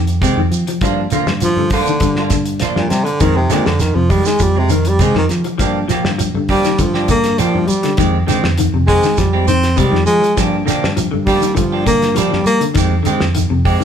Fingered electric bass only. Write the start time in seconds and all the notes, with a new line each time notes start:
Already playing: F2
0.37 F2
0.51 F3
0.82 G2
1.26 G2
1.56 G2
2.01 G2
2.76 G2
2.91 G3
3.21 F2
3.67 F2
3.96 F2
4.40 F2
5.15 F2
5.30 F3
5.59 G2
6.04 G2
6.34 G2
6.79 G2
7.55 G2
7.69 G3
7.98 F2
8.44 F2
8.74 F2
9.19 F2
9.92 F2
10.07 F3
10.38 G2
10.84 G2
11.14 G2
11.57 G2
12.33 G2
12.46 G3
12.76 F2
13.21 F2
13.51 F2